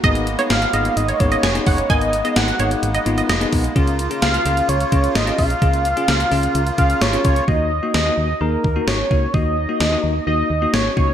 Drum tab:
HH |xxxxxxxxxxxxxxox|xxxxxxxxxxxxxxox|xxxxxxxxxxxxxxox|xxxxxxoxxxxxxxxx|
SD |----o-------o---|----o-------o---|----o-------o---|----o-------o---|
BD |o---------o---o-|o-------------o-|o---------o---o-|o---------o---o-|

HH |----------------|----------------|
SD |----o-------o---|----o-------o---|
BD |o---------o---o-|o-------------o-|